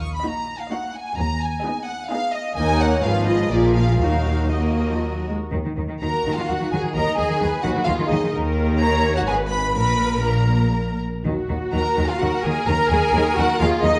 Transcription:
Already playing: D#2
0.02 C#6
0.15 B5
0.24 A#3 D#4 F#4 D#5 A#5
0.62 F5
0.70 A#3 D#4 F#4 D#5 F#5
0.96 G#5
1.18 D#2 A#5
1.42 G#5
1.63 B3 D#4 G#4 D#5
1.87 F#5
2.10 B3 D#4 G#4 D#5 F5
2.34 D#5
2.56 D#2 A#3 D#4 A#4 D#5 G#5
2.81 C#5 F#5
3.03 G#1 G#2 F3 F4 G#4 B4 F5
3.28 D#5
3.51 A#1 A#2 F3 F4 G#4 A#4 D5
3.75 F5
4.00 D#2 F#3 D#4 F#4 A#4 F5
4.52 A#3 F#4 A#4 D#5
4.90 F3
5.02 F#3
5.28 G#3
5.52 D#2 D#3
5.65 D#3
5.77 D#2 D#3
5.89 D#3
6.01 D#2 D#3 F#4 A#4 A#5
6.25 D#2 D#3
6.37 D#3 F4 F5
6.48 D#2 D#3 F#4 F#5
6.61 D#3
6.72 D#2 D#3 G#4 G#5
6.84 D#3
6.95 D#2 D#3 A#4 D#5 A#5
7.07 D#3
7.17 D#2 D#3 G#4 G#5
7.30 D#3
7.41 D#2 D#3 B4
7.62 D#2 D#3 F#4 F#5
7.76 D#3
7.85 D#2 D#3 F4 G#4 F5
7.99 D#3
8.09 D#2 D#3 D#4 D#5
8.23 D#3
8.33 D#2 D#3 A#4
8.80 A#4 C#5 A#5
9.16 F#4 F#5
9.28 G#1 G#2 G#4 B4 G#5
9.51 B4 B5
9.75 A#1 A#2 A#4 B4 B5
10.25 A#4 A#5
11.25 D#2 D#3 F#4
11.49 D#2 D#3
11.73 D#2 D#3 A#4 A#5
11.97 D#2 D#3
12.08 F4 F5
12.19 D#2 D#3 F#4 A#4 F#5
12.43 D#2 D#3 G#4 G#5
12.67 D#2 D#3 A#4 A#5
12.89 D#2 D#3 G#4 G#5
13.13 D#2 D#3
13.36 D#2 D#3 F#4 F#5
13.59 D#2 D#3 F4 G#4 F5
13.82 D#2 D#3 D#4 D#5

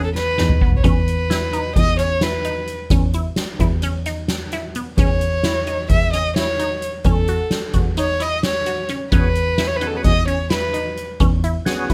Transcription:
Already playing: E2 C#4
0.04 A4
0.15 B4, snare
0.38 E2 D#4, snare
0.49 mid tom
0.61 B3, kick
0.72 floor tom
0.76 C#5
0.83 E2 C#4 B4, kick, closed hi-hat
1.08 closed hi-hat
1.30 E4, snare, closed hi-hat
1.53 D#4, closed hi-hat
1.76 E2 D#5, kick, closed hi-hat
1.99 C#4 C#5, closed hi-hat
2.21 E4 B4, snare, closed hi-hat
2.44 D#4, closed hi-hat
2.67 closed hi-hat
2.90 E2 C#4, kick, closed hi-hat
3.13 E4, closed hi-hat
3.36 snare, closed hi-hat
3.59 E2 E4, kick, closed hi-hat
3.82 C#4, closed hi-hat
4.05 D#4, snare, closed hi-hat
4.28 snare, closed hi-hat
4.52 E4, snare, closed hi-hat
4.75 B3, closed hi-hat
4.98 E2 C#4 C#5, kick, closed hi-hat
5.21 closed hi-hat
5.43 E4, snare, closed hi-hat
5.67 D#4, closed hi-hat
5.89 E2 E5, kick, closed hi-hat
6.13 C#4 D#5, snare, closed hi-hat
6.36 E4 C#5, snare, closed hi-hat
6.59 D#4, closed hi-hat
6.82 closed hi-hat
7.04 E2 C#4 A4, kick, closed hi-hat
7.28 F#4, closed hi-hat
7.51 snare, closed hi-hat
7.73 E2 F#4, kick, closed hi-hat
7.97 D#4 C#5, closed hi-hat
8.20 E4 D#5, snare, closed hi-hat
8.43 C#5, snare, closed hi-hat
8.66 F#4, closed hi-hat
8.88 C#4, snare, closed hi-hat
9.11 E2 B3 C#4 F#4 G#4 B4, kick, closed hi-hat
9.35 closed hi-hat
9.58 E4, snare, closed hi-hat
9.67 C#5
9.76 B4
9.81 B3 C#4 D#4 F#4 G#4, closed hi-hat
9.87 A4
9.96 B4
10.04 E2 D#5, kick, snare, closed hi-hat
10.27 C#4 C#5, closed hi-hat
10.50 E4 B4, snare, closed hi-hat
10.73 D#4, closed hi-hat
10.97 closed hi-hat
11.20 E2 C#4, kick, closed hi-hat
11.44 E4, closed hi-hat
11.65 B3 C#4 F#4 G#4, snare, closed hi-hat
11.90 E2 E4, kick, closed hi-hat

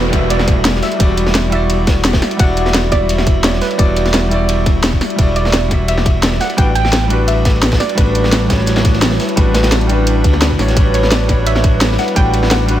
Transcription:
Already playing: E1 G3 E4 F#4 B4 D5, downlifter
0.10 E1 G3 E4 F#4, kick, snare, closed hi-hat, ride
0.16 E5
0.30 D5, closed hi-hat, ride
0.39 snare
0.48 kick, closed hi-hat, ride
0.65 snare, closed hi-hat, ride
0.75 snare
0.82 E5, snare, open hi-hat, ride
0.91 closed hi-hat, ride
0.99 E1 G3 E4 F#4 D5, kick, closed hi-hat, ride
1.17 closed hi-hat, ride
1.26 snare
1.35 snare, closed hi-hat, ride
1.50 E1 G3 E4 F#4 E5, closed hi-hat, ride
1.55 D5
1.70 closed hi-hat, ride
1.87 kick, snare, closed hi-hat, ride
2.05 snare, closed hi-hat, ride
2.13 kick, snare, ride
2.22 snare, open hi-hat
2.31 closed hi-hat, ride
2.37 E1 G3 E4 F#4 F#5, kick, closed hi-hat, ride
2.42 D5
2.57 closed hi-hat, ride
2.66 snare
2.74 snare, closed hi-hat, ride
2.89 E1 G3 E4 F#4 D5, kick, snare, closed hi-hat, ride
2.95 E5
3.09 closed hi-hat, ride
3.18 snare
3.27 kick, closed hi-hat, ride
3.44 C#5, snare, closed hi-hat, ride
3.53 snare
3.61 B4, snare, open hi-hat, ride
3.71 closed hi-hat, ride
3.78 E1 G3 E4 F#4 D5, kick, closed hi-hat, ride
3.96 closed hi-hat, ride
4.06 snare, closed hi-hat
4.14 snare, closed hi-hat, ride
4.29 E1 G3 E4 F#4, closed hi-hat, ride
4.34 D5
4.49 closed hi-hat, ride
4.66 kick, closed hi-hat, ride
4.84 snare, closed hi-hat, ride
4.93 kick
5.01 snare, open hi-hat, ride
5.10 closed hi-hat
5.16 E1 G3 E4 F#4, kick, closed hi-hat, ride
5.21 D5
5.36 D5, closed hi-hat, ride
5.45 snare
5.53 snare, closed hi-hat, ride
5.68 E1 G3 E4 F#4, kick, snare, closed hi-hat, ride
5.74 E5
5.88 E5, closed hi-hat, ride
5.97 snare
6.06 kick, closed hi-hat, ride
6.23 snare, closed hi-hat, ride
6.32 snare
6.40 F#5, snare, open hi-hat, ride
6.50 closed hi-hat, ride
6.57 A1 G3 D4 E4 F#4 B4 G5, kick, closed hi-hat, ride
6.75 G5, closed hi-hat, ride
6.85 snare
6.92 snare, closed hi-hat, ride
7.08 A1 G3 D4 F#4, closed hi-hat, ride
7.13 B4
7.28 E5, closed hi-hat, ride
7.45 kick, snare, closed hi-hat, ride
7.62 snare, closed hi-hat, ride
7.72 kick, snare, ride
7.80 D5, snare, open hi-hat
7.89 closed hi-hat, ride
7.95 A1 G3 D4 F#4 B4, kick, closed hi-hat, ride
8.00 B4
8.15 closed hi-hat, ride
8.24 snare
8.32 snare, closed hi-hat, ride
8.47 A1 G3 D4 F#4, kick, snare, closed hi-hat, ride
8.53 C#5
8.58 snare
8.66 snare, closed hi-hat, ride
8.76 snare, ride
8.85 kick, snare, closed hi-hat
8.94 snare, ride
9.02 snare, closed hi-hat, ride
9.11 snare
9.20 snare, open hi-hat, ride
9.29 closed hi-hat, ride
9.36 A1 G3 D4 F#4 B4, kick, closed hi-hat, ride
9.54 snare, closed hi-hat, ride
9.63 snare, closed hi-hat, ride
9.71 snare, closed hi-hat, ride
9.81 closed hi-hat
9.87 A1 G3 D4 F#4, closed hi-hat, ride
9.92 B4
10.07 closed hi-hat, ride
10.24 D2, kick, closed hi-hat, ride
10.33 snare
10.42 snare, closed hi-hat, ride
10.51 kick
10.58 A1 G3 D4 F#4 C#5, snare, open hi-hat, ride
10.68 snare, closed hi-hat
10.74 A1 G3 D4 F#4, kick, closed hi-hat, ride
10.79 B4
10.94 C#5, closed hi-hat, ride
11.03 snare
11.11 D5, snare, closed hi-hat, ride
11.26 A1 G3 D4 F#4, kick, snare, closed hi-hat, ride
11.32 C#5
11.46 E5, closed hi-hat, ride
11.56 snare
11.64 kick, closed hi-hat, ride
11.81 snare, closed hi-hat, ride
11.91 snare
11.98 F#5, snare, open hi-hat, ride
12.08 closed hi-hat, ride
12.15 A1 G3 D4 F#4 B4 G5, kick, closed hi-hat, ride
12.34 closed hi-hat, ride
12.43 snare
12.51 F#5, snare, closed hi-hat, ride
12.66 A1 G3 D4 F#4, closed hi-hat, ride
12.71 B4

